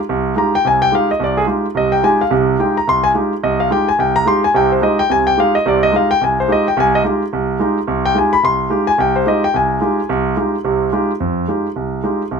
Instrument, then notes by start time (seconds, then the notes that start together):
grand piano
0.09 C2
0.36 G#3 D#4 F4 G4 A#5
0.55 G5
0.65 C2 C3 G#5
0.82 G5
0.92 G#3 D#4 F4 G4 F5
1.11 D#5
1.20 C2
1.24 D5
1.37 G#4
1.47 G#3 D#4 F4 G4
1.75 C2 C3 D#5
1.92 G5
2.03 G#3 D#4 F4 G4 G#5
2.21 F5
2.31 C2 C3
2.59 G#3 D#4 F4 G4 G5
2.77 A#5
2.87 C2 C6
3.04 G#5
3.14 G#3 D#4 F4 G4
3.43 C2 D#5
3.60 F5
3.70 G#3 D#4 F4 G4 G5
3.89 G#5
3.99 C2 G5
4.16 A#5
4.25 G#3 D#4 F4 G4 C6
4.44 G#5
4.54 C2 C3 G5
4.72 C5
4.82 G#3 D#4 F4 G4 D#5
4.99 G5
5.10 C2 C3 G#5
5.27 G5
5.37 G#3 D#4 F4 G4 F5
5.55 D#5
5.66 C2 C3 D5
5.83 D#5
5.92 G#3 D#4 F4 G4 F5
6.11 G5
6.21 C2 G#5
6.40 C5
6.48 G#3 D#4 F4 G4
6.52 D#5
6.68 G5
6.77 C2 G#5
6.95 D#5
7.04 G#3 D#4 F4 G4
7.33 C2
7.60 G#3 D#4 F4 G4
7.88 C2
8.06 G5
8.15 G#3 D#4 F4 G4 G#5
8.33 B5
8.43 C2 C6
8.70 G#3 D#4 F4 G4
8.87 G#5
8.98 C2 G5
9.16 C5
9.26 G#3 D#4 F4 G4 D#5
9.44 G5
9.54 C2 G#5
9.81 G#3 D#4 F4 G4
10.09 C2
10.36 G#3 D#4 F4 G4
10.64 C2 C3
10.92 G#3 D#4 F4 G4
11.20 F2
11.48 G#3 D#4 F4 G4
11.76 C2
12.04 G#3 D#4 F4 G4
12.31 C2